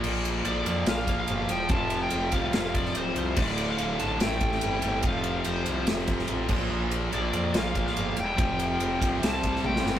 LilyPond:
<<
  \new Staff \with { instrumentName = "Lead electric guitar" } { \time 4/4 \key f \major \tempo 4 = 144 r4 d''4 f''8. f''8. g''8 | a''8. g''8. f''8 f''8 d''8 c''8 c''8 | d''8. f''8. a''8 g''2 | f''4 c''4 r2 |
r4 d''4 f''8. f''8. g''8~ | g''2 a''4 g''8. r16 | }
  \new Staff \with { instrumentName = "Distorted electric guitar" } { \time 4/4 \key f \major <bes, f bes d' f' bes'>4. <bes, f bes d' f' bes'>2 r8 | <f, c f a c' f'>2 <f, c f a c' f'>2 | <d, a, d a f'>2 <a, e a c' e' a'>2 | <f, c f a c' f'>2 <f, c f a c' f'>4. <bes, f bes d' f' bes'>8~ |
<bes, f bes d' f' bes'>4. <bes, f bes d' f' bes'>2 r8 | <f, c f a c' f'>2 <c g c' e' g' c''>2 | }
  \new Staff \with { instrumentName = "Distorted electric guitar" } { \clef bass \time 4/4 \key f \major <bes, f bes>4 <bes, f bes>2~ <bes, f bes>8 r8 | <f, c f>4. <f, c f>2~ <f, c f>8 | <d, a, d>4. <d, a, d>8 <a, e a>4. <a, e a>8 | <f, c f>4. <f, c f>2 <bes, f bes>8~ |
<bes, f bes>4 <bes, f bes>2~ <bes, f bes>8 r8 | <f, c f>4. <f, c f>8 <c g c'>4. <c g c'>8 | }
  \new Staff \with { instrumentName = "Overdriven electric guitar" } { \clef bass \time 4/4 \key f \major <bes, f bes>4 <bes, f bes>4. <bes, f bes>4 r8 | <f, c f>4. <f, c f>4. <f, c f>4 | <d, a, d>4. <d, a, d>8 <a, e a>4. <a, e a>8 | <f, c f>4. <f, c f>4. <f, c f>8 <bes, f bes>8~ |
<bes, f bes>4 <bes, f bes>4. <bes, f bes>4 r8 | <f, c f>4. <f, c f>8 <c g c'>4. <c g c'>8 | }
  \new Staff \with { instrumentName = "FM bass" } { \clef bass \time 4/4 \key f \major bes,,4 bes,,8 f,8 bes,,4 g,,8 e,,8 | f,,4 f,,8 c,8 f,,4 d,,8 c,8 | d,,4 d,,8 a,,8 a,,4 g,,8 g,,8 | f,,4 f,,8 c,8 f,,4 a,,8 bes,,8 |
bes,,4 bes,,8 f,8 bes,,4 g,,8 e,,8 | f,,4 f,,8 bes,,8 c,4 bes,,8 g,,8 | }
  \new DrumStaff \with { instrumentName = "Drums" } \drummode { \time 4/4 cymc8 cymr8 cymr8 cymr8 <cymr sn>8 <bd cymr>8 cymr8 cymr8 | <bd cymr>8 cymr8 cymr8 <bd cymr>8 <cymr sn>8 <bd cymr>16 sn16 cymr8 cymr8 | <cymc bd>8 cymr8 cymr8 cymr8 <cymr sn>8 <bd cymr>16 sn16 cymr8 cymr8 | <bd cymr>8 cymr8 cymr8 cymr8 <cymr sn>8 <bd cymr>16 sn16 cymr8 <cymc bd>8 |
r8 cymr8 cymr8 cymr8 <cymr sn>8 <bd cymr>16 sn16 cymr8 cymr8 | <bd cymr>8 cymr8 cymr8 <bd cymr>8 <cymr sn>8 <bd cymr>16 sn16 tommh16 sn16 sn8 | }
>>